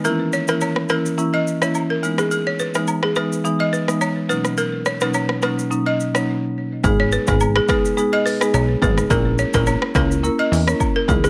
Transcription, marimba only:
0.04 0.45 E3 medium
0.04 0.45 A#3 medium
0.04 0.45 C#4 medium
0.04 0.45 E4 loud
0.48 0.62 E3 medium
0.48 0.62 A#3 medium
0.48 0.62 C#4 medium
0.48 0.62 E4 medium
0.89 1.06 E3 medium
0.89 1.06 A#3 medium
0.89 1.06 C#4 medium
0.89 1.06 E4 medium
1.18 1.34 E3 medium
1.18 1.34 A#3 medium
1.18 1.34 C#4 medium
1.18 1.34 E4 loud
1.61 1.75 E3 medium
1.61 1.76 A#3 medium
1.61 1.76 C#4 medium
1.61 1.76 E4 medium
2.02 2.19 E3 medium
2.02 2.19 G#3 medium
2.02 2.19 B3 medium
2.02 2.19 D#4 medium
2.75 2.89 E3 medium
2.75 2.89 G#3 medium
2.75 2.89 B3 medium
2.75 2.89 D#4 medium
3.16 3.32 E3 medium
3.16 3.32 G#3 medium
3.16 3.32 B3 medium
3.16 3.33 D#4 medium
3.44 3.61 E3 medium
3.44 3.61 G#3 medium
3.44 3.61 B3 medium
3.44 3.61 D#4 loud
3.88 4.02 E3 medium
3.88 4.02 G#3 medium
3.88 4.02 B3 medium
3.88 4.02 D#4 medium
4.29 4.45 B2 medium
4.29 4.46 F#3 medium
4.29 4.46 A#3 medium
4.29 4.46 C#4 medium
4.29 4.46 D#4 medium
5.01 5.15 B2 medium
5.01 5.15 F#3 medium
5.01 5.15 A#3 medium
5.01 5.15 C#4 medium
5.01 5.15 D#4 medium
5.42 5.59 B2 medium
5.42 5.59 F#3 medium
5.42 5.59 A#3 medium
5.42 5.59 C#4 medium
5.42 5.59 D#4 medium
5.70 5.87 B2 medium
5.70 5.87 F#3 medium
5.70 5.87 A#3 medium
5.70 5.87 C#4 medium
5.70 5.87 D#4 loud
6.14 6.27 B2 medium
6.14 6.27 F#3 medium
6.14 6.27 A#3 medium
6.14 6.27 C#4 medium
6.14 6.27 D#4 medium
6.84 7.24 G#3 medium
6.84 7.24 B3 medium
6.84 7.24 D#4 medium
6.84 7.24 G#4 loud
7.28 7.42 G#3 medium
7.28 7.42 B3 medium
7.28 7.42 D#4 medium
7.28 7.42 G#4 medium
7.69 7.85 G#3 medium
7.69 7.85 B3 medium
7.69 7.85 D#4 medium
7.69 7.85 G#4 medium
7.97 8.13 G#3 medium
7.97 8.14 B3 medium
7.97 8.14 D#4 medium
7.97 8.14 G#4 loud
8.41 8.55 G#3 medium
8.41 8.55 B3 medium
8.41 8.55 D#4 medium
8.41 8.55 G#4 medium
8.82 8.98 G#3 medium
8.82 8.98 B3 medium
8.82 8.99 D#4 medium
8.82 8.99 G#4 medium
9.10 9.50 A#3 loud
9.10 9.50 C#4 medium
9.10 9.50 E4 medium
9.10 9.51 A#4 loud
9.54 9.68 A#3 medium
9.54 9.68 C#4 medium
9.54 9.68 E4 medium
9.54 9.68 A#4 medium
9.95 10.11 A#3 medium
9.95 10.12 C#4 medium
9.95 10.12 E4 medium
9.95 10.12 A#4 medium
10.23 10.40 A#3 medium
10.23 10.40 C#4 medium
10.23 10.40 E4 medium
10.23 10.40 A#4 loud
10.67 10.81 A#3 medium
10.67 10.81 C#4 medium
10.67 10.81 E4 medium
10.67 10.81 A#4 medium
11.08 11.25 B3 medium
11.08 11.25 D#4 medium
11.08 11.25 E4 medium
11.08 11.25 G#4 medium

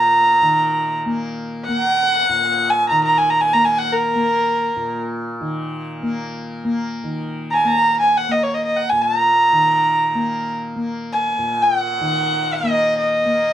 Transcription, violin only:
0.00 0.98 A#5 medium
1.65 2.72 F#5 loud
2.70 2.89 G#5 medium
2.89 3.03 A#5 medium
3.04 3.19 A#5 medium
3.18 3.31 G#5 medium
3.30 3.43 A#5 medium
3.41 3.55 G#5 medium
3.53 3.67 A#5 medium
3.65 3.80 G#5 medium
3.79 3.94 F#5 medium
3.92 5.00 A#4 medium
7.51 7.68 G#5 medium
7.51 7.55 A#5 medium
7.66 8.00 A#5 medium
8.00 8.19 G#5 medium
8.17 8.33 F#5 medium
8.32 8.45 D#5 medium
8.43 8.56 C#5 medium
8.54 8.65 D#5 medium
8.65 8.78 D#5 medium
8.77 8.91 F#5 medium
8.89 9.04 G#5 medium
9.02 9.17 A5 medium
9.17 10.55 A#5 medium
11.13 11.64 G#5 medium
11.62 12.55 F#5 medium
12.54 12.97 D#5 medium
12.98 13.53 D#5 medium

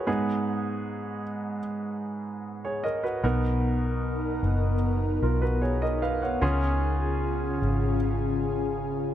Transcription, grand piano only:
0.00 0.25 C#5 soft
0.07 1.22 G#2 medium
0.07 1.57 B3 medium
0.07 1.58 D#4 medium
0.07 1.58 G#4 medium
2.65 2.84 G#4 soft
2.65 2.83 C#5 soft
2.84 3.03 A#4 soft
2.84 3.03 D#5 medium
3.03 3.41 F#4 soft
3.03 3.41 B4 soft
3.23 4.39 B2 medium
3.23 4.75 B3 medium
3.23 4.75 D#4 medium
3.23 4.75 A#4 medium
5.23 5.42 F4 soft
5.23 5.41 A#4 soft
5.42 5.61 F#4 soft
5.42 5.61 B4 soft
5.62 5.81 G#4 soft
5.62 5.81 C#5 medium
5.82 6.01 A#4 soft
5.82 6.01 D#5 medium
6.02 6.21 B4 soft
6.02 6.21 F5 medium
6.22 6.60 C#5 soft
6.22 6.60 F#5 soft
6.41 7.58 C#3 medium
6.41 7.94 C#4 medium
6.41 7.95 F4 medium
6.41 7.95 G#4 medium

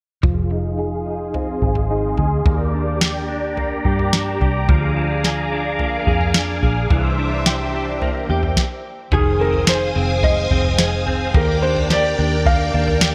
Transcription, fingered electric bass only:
0.23 1.58 F1 medium
1.62 2.15 G#1 medium
2.18 2.44 D2 medium
2.46 3.81 D#2 medium
3.85 4.38 G2 medium
4.41 4.67 C2 medium
4.69 6.03 D2 medium
6.07 6.60 F2 medium
6.63 6.89 A#1 medium
6.91 8.25 C2 medium
8.29 8.56 E2 medium
9.12 9.92 F1 medium
9.96 10.49 F1 medium
10.51 11.30 F1 medium
11.34 12.14 D#2 loud
12.19 12.71 D#2 medium
12.74 13.15 D#2 medium

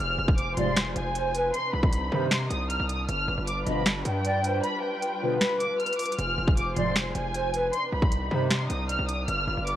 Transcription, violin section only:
0.00 0.36 F6 loud
0.38 0.54 D6 medium
0.57 0.93 C6 medium
0.96 1.50 G#5 medium
1.54 1.71 C6 loud
1.73 2.28 B5 medium
2.32 2.48 C6 medium
2.50 2.67 D#6 medium
2.71 2.87 F6 medium
2.89 3.06 D#6 medium
3.08 3.45 F6 loud
3.47 3.64 D6 medium
3.67 4.03 B5 medium
4.05 4.60 G5 medium
4.63 4.80 B5 loud
4.82 5.37 G5 medium
5.41 5.58 B5 medium
5.60 5.77 D6 medium
5.80 5.97 F6 medium
5.99 6.16 D6 medium
6.19 6.55 F6 loud
6.57 6.74 D6 medium
6.76 7.13 C6 medium
7.15 7.70 G#5 medium
7.73 7.90 C6 loud
7.93 8.47 B5 medium
8.51 8.68 C6 medium
8.70 8.87 D#6 medium
8.90 9.06 F6 loud
9.09 9.25 D#6 medium
9.28 9.64 F6 loud
9.67 9.76 D6 medium

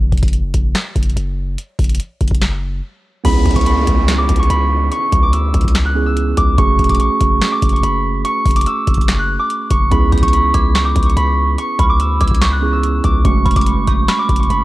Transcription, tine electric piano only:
3.24 5.91 B3 medium
3.24 5.92 C#4 medium
3.24 5.92 E4 medium
3.24 5.92 G#4 medium
5.95 6.58 B3 medium
5.95 6.57 C#4 soft
5.95 6.58 E4 soft
5.95 6.58 G#4 medium
6.57 9.87 A3 medium
6.57 9.87 C#4 medium
6.57 9.88 F#4 medium
6.57 9.88 G#4 medium
9.90 12.58 B3 medium
9.90 12.58 C#4 medium
9.90 12.59 E4 medium
9.90 12.59 G#4 medium
12.62 13.24 B3 medium
12.62 13.23 C#4 soft
12.62 13.25 E4 soft
12.62 13.25 G#4 medium
13.24 14.64 G#3 medium
13.24 14.64 A3 medium
13.24 14.64 C#4 medium
13.24 14.64 F#4 medium

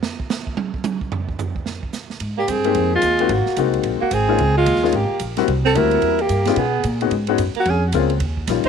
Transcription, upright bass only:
2.20 2.47 G#2 medium
2.48 2.74 G2 medium
2.75 3.02 F2 medium
3.02 3.29 D#2 medium
3.29 3.45 G#1 medium
3.47 muted upright bass stroke soft
3.57 3.83 C2 medium
3.84 4.00 A#1 medium
4.01 muted upright bass stroke soft
4.11 4.38 G#1 medium
4.38 4.65 C#2 medium
4.66 4.92 D#2 medium
4.93 5.09 G#1 medium
5.10 muted upright bass stroke soft
5.20 5.47 A#1 medium
5.48 5.74 C2 medium
5.75 6.01 D2 medium
6.02 6.29 E2 medium
6.29 6.56 G2 medium
6.57 6.83 B2 medium
6.84 7.10 A#2 medium
7.11 7.37 G#2 medium
7.38 7.54 F#2 medium
7.55 muted upright bass stroke soft
7.66 7.92 F2 loud
7.93 8.19 C#2 medium
8.20 8.47 D#2 medium
8.47 8.63 A#1 medium

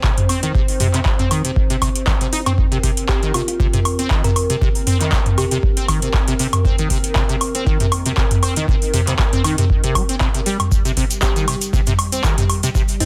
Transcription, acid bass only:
0.04 0.11 C3 loud
0.29 0.41 C4 medium
0.43 0.53 D#3 loud
0.55 0.62 C3 medium
0.80 0.88 C3 loud
0.94 1.00 C3 loud
1.19 1.29 C4 medium
1.31 1.42 D#3 loud
1.45 1.51 C3 medium
1.70 1.77 C3 loud
1.82 1.89 C3 medium
2.07 2.12 D#3 loud
2.21 2.27 C3 medium
2.33 2.40 D#4 loud
2.46 2.53 C4 loud
2.72 2.78 C3 loud
2.83 2.91 C3 loud
3.09 3.20 C4 medium
3.23 3.32 D#3 loud
3.34 3.42 C3 medium
3.60 3.67 C3 loud
3.73 3.80 C3 loud
3.99 4.09 C4 medium
4.11 4.22 D#3 loud
4.24 4.31 C3 medium
4.50 4.56 C3 loud
4.61 4.69 C3 loud
4.87 4.98 C4 medium
5.01 5.10 D#3 loud
5.12 5.20 C3 medium
5.38 5.45 C3 loud
5.52 5.58 C3 loud
5.77 5.87 C4 medium
5.89 6.00 D#3 loud
6.02 6.09 C3 medium
6.28 6.34 C3 loud
6.39 6.47 C3 loud
6.65 6.76 C4 medium
6.79 6.88 D#3 loud
6.90 6.98 C3 medium
7.16 7.23 C3 loud
7.29 7.36 C3 loud
7.55 7.65 C4 medium
7.67 7.78 D#3 loud
7.80 7.87 C3 medium
8.06 8.12 C3 loud
8.17 8.25 C3 loud
8.43 8.54 C4 medium
8.57 8.66 D#3 loud
8.68 8.76 C3 medium
8.94 9.01 C3 loud
9.07 9.14 C3 loud
9.33 9.43 C4 medium
9.45 9.56 D#3 loud
9.58 9.65 C3 medium
9.84 9.97 C3 loud
9.95 10.03 G3 medium
10.09 10.16 C4 medium
10.21 10.28 C3 loud
10.34 10.41 C3 medium
10.46 10.57 G3 loud
10.85 10.92 C3 loud
10.97 11.04 C3 loud
11.22 11.34 C4 medium
11.36 11.46 D#3 loud
11.48 11.55 C3 medium
11.73 11.81 C3 loud
11.87 11.93 C3 loud
12.12 12.22 C4 medium
12.24 12.35 D#3 loud
12.38 12.44 C3 medium
12.63 12.70 C3 loud
12.75 12.82 C3 loud
13.00 13.05 C4 medium

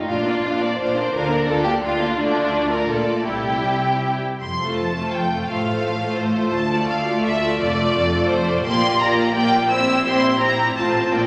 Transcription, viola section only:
0.09 0.25 D4 soft
0.09 0.25 F4 soft
0.27 0.44 A#3 soft
0.27 0.44 D4 soft
0.44 0.60 D4 soft
0.44 0.62 F4 soft
0.62 0.79 A#3 soft
0.62 0.78 D4 soft
0.79 0.95 D4 soft
0.79 0.96 F4 soft
0.96 1.14 A#3 soft
0.96 1.12 D4 soft
1.14 1.30 D4 soft
1.14 1.30 F4 soft
1.30 1.48 A#3 soft
1.30 1.47 D4 soft
1.49 1.65 D4 soft
1.49 1.66 F4 soft
1.66 1.83 A#3 soft
1.66 1.82 D4 soft
1.83 2.00 D4 soft
1.83 2.00 F4 soft
2.01 2.18 A#3 soft
2.01 2.19 D4 soft
2.18 2.85 A3 soft
2.18 2.85 F4 soft
2.90 3.08 A#3 soft
2.90 3.26 F4 soft
3.08 3.27 A3 soft
3.28 4.23 G3 soft
3.28 4.21 E4 soft
4.60 4.95 A3 soft
4.60 4.95 F4 soft
4.96 5.31 A3 soft
4.96 5.30 F4 soft
5.32 5.49 A3 soft
5.32 5.48 F4 soft
5.50 5.66 A3 soft
5.50 5.66 F4 soft
5.67 6.00 A3 soft
5.67 6.00 F4 soft
6.01 6.35 A3 soft
6.01 6.35 F4 soft
6.36 6.54 A3 soft
6.36 6.53 F4 soft
6.71 7.06 A3 soft
6.71 7.06 F4 soft
7.07 7.42 A3 soft
7.07 7.41 F4 soft
7.43 7.59 A3 soft
7.43 7.59 F4 soft
7.60 7.77 A3 soft
7.60 7.77 F4 soft
7.78 8.12 A3 soft
7.78 8.12 F4 soft
8.13 8.47 A3 soft
8.13 8.47 F4 soft
8.48 8.65 A3 soft
8.48 8.65 F4 soft
8.67 8.98 A#3 medium
8.67 8.98 F4 soft
9.01 9.35 A#3 medium
9.01 9.35 F4 medium
9.36 9.70 A#3 medium
9.36 9.70 F4 soft
9.71 10.05 C4 medium
9.71 10.05 E4 soft
10.06 10.41 C4 medium
10.06 10.40 E4 medium
10.42 10.76 C4 soft
10.42 10.76 E4 soft
10.78 11.12 C4 soft
10.78 11.11 F4 soft
11.12 11.27 A#3 soft
11.12 11.27 F4 soft

